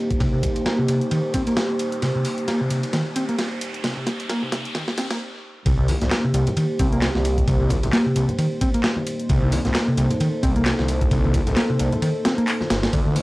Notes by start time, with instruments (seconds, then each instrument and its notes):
Already playing: analog synth pad A#3 D#4 G4 C5, riser
0.11 kick, closed hi-hat
0.20 picked electric bass C3, kick, closed hi-hat, ride
0.33 picked electric bass C3
0.43 kick, closed hi-hat, ride
0.56 closed hi-hat, ride
0.66 picked electric bass A#3, snare, closed hi-hat, ride
0.79 picked electric bass C3
0.88 picked electric bass C3, closed hi-hat, ride
1.01 closed hi-hat
1.11 picked electric bass D#3, closed hi-hat, ride
1.34 picked electric bass C4, kick, closed hi-hat, ride
1.47 picked electric bass A#3, closed hi-hat, ride
1.57 snare, closed hi-hat, ride
1.79 closed hi-hat, ride
1.92 closed hi-hat
2.02 picked electric bass C3, snare, closed hi-hat, ride
2.15 picked electric bass C3
2.25 closed hi-hat, open hi-hat
2.38 closed hi-hat
2.48 picked electric bass A#3, snare, closed hi-hat, ride
2.61 picked electric bass C3
2.70 picked electric bass C3, closed hi-hat, ride
2.83 closed hi-hat, ride
2.93 picked electric bass D#3, snare, closed hi-hat, ride
3.16 picked electric bass C4, closed hi-hat, ride
3.29 picked electric bass A#3, closed hi-hat
3.38 snare, closed hi-hat, ride
3.61 closed hi-hat, ride
3.74 closed hi-hat
3.84 picked electric bass C3, snare, closed hi-hat, ride
3.97 picked electric bass C3
4.07 snare, closed hi-hat, ride
4.20 closed hi-hat, ride
4.29 picked electric bass A#3, snare, closed hi-hat, ride
4.42 picked electric bass C3
4.52 picked electric bass C3, snare, closed hi-hat, ride
4.65 closed hi-hat
4.75 picked electric bass D#3, snare, closed hi-hat, ride
4.88 snare
4.98 picked electric bass C4, snare, closed hi-hat, open hi-hat
5.11 picked electric bass A#3, snare, closed hi-hat, ride
5.66 detuned saw bass C2, picked electric bass C3, analog synth pad A#3 D#4 G4 C5, kick, closed hi-hat, ride
5.79 picked electric bass C3
5.88 closed hi-hat, open hi-hat, high conga
6.02 detuned saw bass C2, snare, closed hi-hat, low conga
6.11 picked electric bass A#3, snare, clap, closed hi-hat, ride
6.25 picked electric bass C3
6.34 detuned saw bass C2, picked electric bass C3, closed hi-hat, ride
6.47 closed hi-hat, ride, low conga
6.57 picked electric bass D#3, closed hi-hat, ride
6.79 detuned saw bass C2, picked electric bass C4, kick, closed hi-hat, ride
6.92 picked electric bass A#3, closed hi-hat
7.02 snare, clap, closed hi-hat, ride
7.15 detuned saw bass C2, snare, high conga
7.25 closed hi-hat, ride
7.38 kick, closed hi-hat
7.48 detuned saw bass C2, picked electric bass C3, kick, closed hi-hat, ride
7.61 picked electric bass C3
7.70 kick, closed hi-hat, ride, high conga
7.83 detuned saw bass C2, closed hi-hat, ride, low conga
7.93 picked electric bass A#3, snare, clap, closed hi-hat, ride
8.06 picked electric bass C3
8.16 detuned saw bass C2, picked electric bass C3, closed hi-hat, ride
8.29 closed hi-hat, low conga
8.39 picked electric bass D#3, closed hi-hat, ride
8.61 picked electric bass C4, kick, closed hi-hat, ride
8.74 picked electric bass A#3, closed hi-hat, ride
8.84 snare, clap, closed hi-hat, ride
8.97 high conga
9.07 closed hi-hat, ride
9.19 closed hi-hat
9.29 detuned saw bass C2, picked electric bass C3, analog synth pad A4, kick, closed hi-hat, ride
9.42 picked electric bass C3
9.52 closed hi-hat, open hi-hat, high conga
9.65 detuned saw bass C2, snare, closed hi-hat, low conga
9.75 picked electric bass A#3, snare, clap, closed hi-hat, ride
9.88 picked electric bass C3
9.97 detuned saw bass C2, picked electric bass C3, closed hi-hat, ride
10.10 closed hi-hat, ride, low conga
10.20 picked electric bass D#3, closed hi-hat, ride
10.43 detuned saw bass C2, picked electric bass C4, kick, closed hi-hat, ride
10.56 picked electric bass A#3, closed hi-hat
10.66 snare, clap, closed hi-hat, ride
10.79 detuned saw bass C2, snare, high conga
10.88 closed hi-hat, ride
11.01 kick, closed hi-hat
11.11 detuned saw bass C2, picked electric bass C3, kick, closed hi-hat, ride
11.24 picked electric bass C3, high conga
11.34 kick, closed hi-hat, ride, high conga
11.47 detuned saw bass C2, closed hi-hat, ride, low conga
11.57 picked electric bass A#3, snare, clap, closed hi-hat, ride
11.70 picked electric bass C3
11.79 detuned saw bass C2, picked electric bass C3, closed hi-hat, ride
11.92 closed hi-hat, low conga
12.02 picked electric bass D#3, closed hi-hat, ride
12.25 picked electric bass C4, snare, closed hi-hat, ride
12.38 picked electric bass A#3, closed hi-hat
12.48 clap, closed hi-hat, open hi-hat
12.61 snare, high conga
12.70 detuned saw bass G1, snare, closed hi-hat, ride
12.83 snare, closed hi-hat, ride
12.93 detuned saw bass D2, picked electric bass D3, analog synth pad A3 D4 F4 C5, kick, closed hi-hat, ride
13.06 picked electric bass D3
13.16 closed hi-hat, open hi-hat, high conga